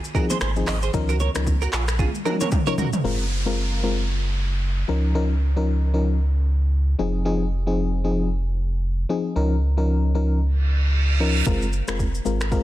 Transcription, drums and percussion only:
0.04 shaker
0.15 kick, shaker
0.30 low bongo, shaker
0.41 finger snap, cross-stick, high bongo, shaker
0.56 shaker
0.67 finger snap, cross-stick, clap, open hi-hat, low conga, shaker
0.82 shaker
0.94 kick, low conga, shaker
1.09 shaker
1.20 high bongo, low bongo, shaker
1.35 finger snap, cross-stick, low bongo, shaker
1.47 kick, high bongo, low bongo, shaker
1.62 shaker
1.73 finger snap, cross-stick, clap, shaker
1.88 finger snap, cross-stick, shaker
1.99 kick, high tom, low conga, shaker
2.15 shaker
2.25 mid tom, shaker
2.41 mid tom, low bongo, shaker
2.51 kick, mid tom, high bongo, shaker
2.67 shaker
2.78 floor tom, low conga, shaker
2.93 floor tom, shaker
11.47 kick, shaker
11.62 shaker
11.73 shaker
11.88 finger snap, cross-stick, shaker
11.99 kick, shaker
12.15 shaker
12.25 shaker
12.41 finger snap, cross-stick, shaker
12.52 kick, shaker

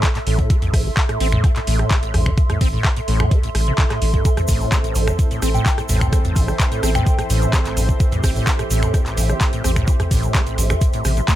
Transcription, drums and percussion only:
0.03 kick, cross-stick, clap, closed hi-hat
0.15 clap, closed hi-hat
0.27 open hi-hat
0.39 kick, closed hi-hat
0.50 kick, closed hi-hat
0.62 closed hi-hat, mid tom
0.74 kick, cross-stick, open hi-hat
0.97 finger snap, kick, clap, closed hi-hat
1.09 cross-stick, closed hi-hat
1.20 open hi-hat
1.32 finger snap, closed hi-hat, mid tom
1.44 kick, cross-stick, closed hi-hat
1.56 clap, closed hi-hat
1.67 open hi-hat
1.79 cross-stick, closed hi-hat
1.91 kick, clap, closed hi-hat
2.03 closed hi-hat
2.14 cross-stick, mid tom, open hi-hat
2.26 finger snap, kick, closed hi-hat, mid tom
2.38 kick, closed hi-hat
2.50 cross-stick, closed hi-hat, mid tom
2.61 kick, open hi-hat
2.84 finger snap, kick, cross-stick, clap, closed hi-hat
2.97 closed hi-hat
3.08 open hi-hat
3.20 finger snap, cross-stick, mid tom
3.31 kick, closed hi-hat
3.43 closed hi-hat
3.55 cross-stick, open hi-hat
3.67 closed hi-hat
3.78 kick, clap, closed hi-hat
3.90 cross-stick, clap, closed hi-hat
4.02 open hi-hat
4.14 kick, closed hi-hat
4.25 kick, closed hi-hat, shaker
4.37 cross-stick, closed hi-hat, mid tom, shaker
4.48 kick, open hi-hat, shaker
4.61 shaker
4.72 finger snap, kick, cross-stick, clap, closed hi-hat, shaker
4.84 closed hi-hat, shaker
4.95 open hi-hat, shaker
5.08 finger snap, cross-stick, mid tom, shaker
5.19 kick, closed hi-hat, shaker
5.31 closed hi-hat, shaker
5.42 cross-stick, open hi-hat, shaker
5.54 closed hi-hat, shaker
5.66 kick, clap, closed hi-hat, shaker
5.78 cross-stick, closed hi-hat, shaker
5.89 mid tom, open hi-hat, shaker
6.01 finger snap, kick, mid tom, shaker
6.13 kick, cross-stick, closed hi-hat, shaker
6.24 closed hi-hat, mid tom, shaker
6.36 kick, open hi-hat, shaker
6.48 cross-stick, shaker
6.60 finger snap, kick, clap, closed hi-hat, shaker
6.72 closed hi-hat, shaker
6.83 cross-stick, open hi-hat, shaker
6.95 finger snap, mid tom, shaker
7.06 kick, closed hi-hat, shaker
7.19 cross-stick, closed hi-hat, shaker
7.30 open hi-hat, shaker
7.42 closed hi-hat, shaker
7.53 kick, cross-stick, clap, closed hi-hat, shaker
7.65 clap, closed hi-hat, shaker
7.77 open hi-hat, shaker
7.89 kick, closed hi-hat, shaker
8.00 kick, closed hi-hat, shaker
8.12 closed hi-hat, mid tom, shaker
8.23 kick, cross-stick, open hi-hat, shaker
8.36 shaker
8.47 finger snap, kick, clap, closed hi-hat, shaker
8.59 cross-stick, closed hi-hat, shaker
8.71 open hi-hat, shaker
8.82 finger snap, closed hi-hat, mid tom, shaker
8.94 kick, cross-stick, closed hi-hat, shaker
9.06 clap, closed hi-hat, shaker
9.17 open hi-hat, shaker
9.29 cross-stick, closed hi-hat, shaker
9.40 kick, clap, closed hi-hat, shaker
9.53 closed hi-hat, shaker
9.64 cross-stick, mid tom, open hi-hat, shaker
9.76 finger snap, kick, closed hi-hat, mid tom, shaker
9.87 kick, closed hi-hat, shaker
10.00 cross-stick, closed hi-hat, mid tom, shaker
10.11 kick, open hi-hat, shaker
10.23 closed hi-hat, shaker
10.34 finger snap, kick, cross-stick, clap, closed hi-hat, shaker
10.47 closed hi-hat, shaker
10.58 open hi-hat, shaker
10.70 finger snap, cross-stick, closed hi-hat, mid tom, shaker
10.81 kick, closed hi-hat, shaker
10.93 closed hi-hat, shaker
11.05 cross-stick, open hi-hat, shaker
11.17 closed hi-hat, shaker
11.28 kick, clap, closed hi-hat, shaker

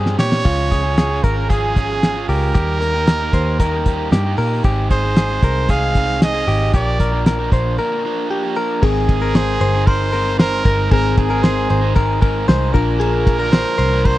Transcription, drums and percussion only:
0.06 snare
0.19 snare
0.32 snare
0.45 kick, crash
0.71 kick, snare, closed hi-hat
0.98 snare, closed hi-hat
1.24 kick, closed hi-hat
1.50 kick, closed hi-hat
1.76 kick, closed hi-hat
2.03 snare, closed hi-hat
2.30 open hi-hat
2.55 kick, closed hi-hat
2.81 snare, closed hi-hat
3.07 snare, closed hi-hat
3.33 kick, closed hi-hat
3.60 kick, closed hi-hat
3.86 kick, closed hi-hat
4.12 snare, closed hi-hat
4.39 open hi-hat
4.64 kick, closed hi-hat
4.91 kick, closed hi-hat
5.16 snare, closed hi-hat
5.43 kick, closed hi-hat
5.69 kick, closed hi-hat
5.95 kick, closed hi-hat
6.22 snare, closed hi-hat
6.48 open hi-hat
6.73 kick, closed hi-hat
7.00 kick, closed hi-hat
7.26 snare, closed hi-hat
7.52 kick, closed hi-hat
8.83 kick, crash
9.09 kick, ride
9.35 snare, ride
9.61 ride
9.87 kick, ride
10.14 ride
10.39 snare, ride
10.65 kick, ride
10.91 kick, ride
11.17 kick, snare, ride
11.44 snare, ride
11.70 ride
11.96 kick, ride
12.22 kick, ride
12.49 snare, ride
12.75 kick, ride
13.01 ride
13.27 kick, snare, ride
13.53 snare, ride
13.79 ride
14.05 kick, ride

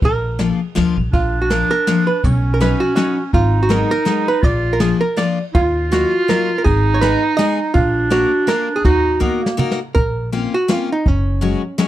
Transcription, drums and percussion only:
0.02 kick, ride
0.39 snare, ride
0.76 snare, ride
1.13 kick, ride
1.50 snare, ride
1.87 snare, ride
2.24 kick, ride
2.61 snare, ride
2.97 snare, ride
3.33 kick, ride
3.70 snare, ride
4.06 snare, ride
4.43 kick, ride
4.80 snare, ride
5.17 snare, ride
5.55 kick, ride
5.92 snare, ride
6.30 snare, ride
6.65 kick, ride
7.02 snare, ride
7.39 snare, ride
7.75 kick, ride
8.11 snare, ride
8.48 snare, ride
8.84 kick, ride
9.21 kick
9.46 snare
9.59 mid tom
9.71 snare
9.96 kick, closed hi-hat
10.33 closed hi-hat
10.69 snare, closed hi-hat
11.05 kick, closed hi-hat
11.43 closed hi-hat
11.78 snare, closed hi-hat

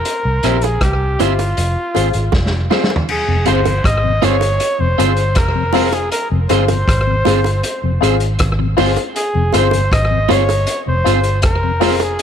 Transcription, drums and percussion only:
0.05 closed hi-hat
0.43 cross-stick, closed hi-hat
0.61 closed hi-hat, high bongo
0.81 kick, cross-stick, closed hi-hat
1.20 closed hi-hat, low bongo
1.39 closed hi-hat, high bongo
1.57 closed hi-hat
1.95 closed hi-hat, high bongo
2.13 closed hi-hat
2.32 kick, snare, high bongo
2.46 snare
2.71 snare, low bongo
2.84 snare
2.90 high bongo
2.96 floor tom
3.09 crash
3.46 closed hi-hat, high bongo
3.65 closed hi-hat, high bongo
3.84 kick, cross-stick, closed hi-hat
4.22 closed hi-hat, low bongo
4.41 closed hi-hat, high bongo
4.60 closed hi-hat
4.99 closed hi-hat
5.17 closed hi-hat
5.35 kick, cross-stick, closed hi-hat
5.73 open hi-hat, low bongo
5.93 closed hi-hat, high bongo
6.12 closed hi-hat
6.49 cross-stick, closed hi-hat, high bongo
6.68 closed hi-hat, high bongo
6.88 kick, cross-stick, closed hi-hat
7.25 closed hi-hat, low bongo
7.44 closed hi-hat, high bongo
7.63 closed hi-hat
8.03 closed hi-hat
8.20 closed hi-hat
8.39 kick, cross-stick, closed hi-hat
8.78 open hi-hat, low bongo
8.96 closed hi-hat, high bongo
9.16 closed hi-hat
9.53 closed hi-hat, high bongo
9.71 closed hi-hat, high bongo
9.92 kick, cross-stick, closed hi-hat
10.29 closed hi-hat, low bongo
10.49 closed hi-hat, high bongo
10.67 closed hi-hat
11.06 closed hi-hat
11.23 closed hi-hat
11.42 kick, cross-stick, closed hi-hat
11.81 open hi-hat, low bongo
12.00 closed hi-hat, high bongo
12.19 closed hi-hat

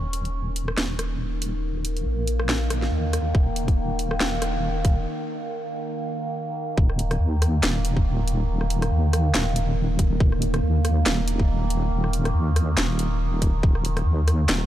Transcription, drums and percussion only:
0.13 closed hi-hat
0.25 closed hi-hat
0.56 closed hi-hat
0.68 cross-stick
0.78 snare
0.99 cross-stick, closed hi-hat
1.42 closed hi-hat
1.85 closed hi-hat
1.97 closed hi-hat
2.27 closed hi-hat
2.40 cross-stick
2.49 snare
2.70 cross-stick, closed hi-hat
2.82 snare
3.13 cross-stick, closed hi-hat
3.35 kick
3.56 closed hi-hat
3.68 kick, closed hi-hat
3.99 closed hi-hat
4.11 cross-stick
4.20 snare
4.42 cross-stick, closed hi-hat
4.85 kick, closed hi-hat
6.78 kick
6.90 cross-stick
6.99 closed hi-hat
7.11 cross-stick, closed hi-hat
7.42 cross-stick, closed hi-hat
7.63 snare, clap
7.85 closed hi-hat
7.97 kick
8.28 closed hi-hat
8.61 cross-stick
8.70 closed hi-hat
8.82 cross-stick, closed hi-hat
9.13 cross-stick, closed hi-hat
9.35 snare, clap
9.56 closed hi-hat
9.99 kick, closed hi-hat
10.20 kick
10.32 cross-stick
10.42 closed hi-hat
10.54 cross-stick, closed hi-hat
10.85 cross-stick, closed hi-hat
11.06 snare, clap
11.28 closed hi-hat
11.40 kick
11.70 closed hi-hat
12.04 cross-stick
12.13 closed hi-hat
12.25 cross-stick, closed hi-hat
12.56 cross-stick, closed hi-hat
12.78 snare, clap
12.99 closed hi-hat
13.42 kick, closed hi-hat
13.63 kick
13.75 cross-stick
13.85 closed hi-hat
13.97 cross-stick, closed hi-hat
14.28 cross-stick, closed hi-hat
14.49 snare, clap

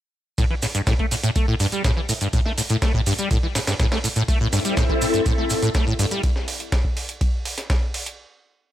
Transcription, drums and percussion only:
0.38 kick, closed hi-hat, ride, maracas
0.62 snare, open hi-hat, ride, maracas
0.75 closed hi-hat, maracas
0.87 kick, snare, closed hi-hat, ride, maracas
0.99 kick, ride
1.11 open hi-hat, ride, maracas
1.23 closed hi-hat, maracas
1.36 kick, closed hi-hat, ride, maracas
1.60 open hi-hat, ride, maracas
1.72 closed hi-hat, maracas
1.84 kick, snare, closed hi-hat, ride, maracas
2.09 open hi-hat, ride, maracas
2.21 closed hi-hat, maracas
2.33 kick, closed hi-hat, ride, maracas
2.45 snare
2.58 open hi-hat, ride, maracas
2.69 closed hi-hat, maracas
2.82 kick, snare, closed hi-hat, ride, maracas
2.94 kick
3.06 open hi-hat, ride, maracas
3.18 closed hi-hat, maracas
3.31 kick, closed hi-hat, ride, maracas
3.55 snare, open hi-hat, ride, maracas
3.67 snare, closed hi-hat, ride, maracas
3.79 kick, snare, closed hi-hat, ride, maracas
3.92 snare, ride
4.04 open hi-hat, ride, maracas
4.16 closed hi-hat, maracas
4.28 kick, closed hi-hat, ride, maracas
4.53 snare, open hi-hat, ride, maracas
4.65 closed hi-hat, maracas
4.77 kick, snare, closed hi-hat, ride, maracas
4.89 kick, ride
5.02 open hi-hat, ride, maracas
5.14 closed hi-hat, maracas
5.26 kick, closed hi-hat, ride, maracas
5.50 open hi-hat, ride, maracas
5.62 closed hi-hat, maracas
5.74 kick, snare, closed hi-hat, ride, maracas
5.99 open hi-hat, ride, maracas
6.11 closed hi-hat, maracas
6.23 kick, closed hi-hat, ride
6.36 snare
6.48 open hi-hat, ride
6.60 closed hi-hat
6.72 kick, snare, closed hi-hat, ride
6.84 kick
6.97 open hi-hat, ride
7.09 closed hi-hat
7.21 kick, closed hi-hat, ride
7.45 open hi-hat, ride
7.58 snare, closed hi-hat
7.70 kick, snare, closed hi-hat, ride
7.94 open hi-hat, ride
8.06 closed hi-hat

